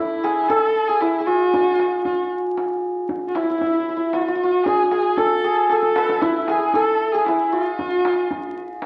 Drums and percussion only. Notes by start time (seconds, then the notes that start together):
0.24 tombak tek
0.50 tombak dum
0.76 tombak ka
1.01 tombak tek
1.53 tombak dum
1.79 tombak tek
2.05 tombak dum
2.57 tombak tek
3.09 tombak dum
3.35 tombak tek
3.61 tombak dum
3.88 tombak ka
4.13 tombak tek
4.66 tombak dum
4.91 tombak tek
5.17 tombak dum
5.44 tombak ka
5.70 tombak tek
5.82 tombak ka
5.96 tombak tek
6.09 tombak ka
6.22 tombak dum
6.48 tombak tek
6.74 tombak dum
7.01 tombak ka
7.26 tombak tek
7.79 tombak dum
8.05 tombak tek
8.31 tombak dum
8.56 tombak ka
8.82 tombak tek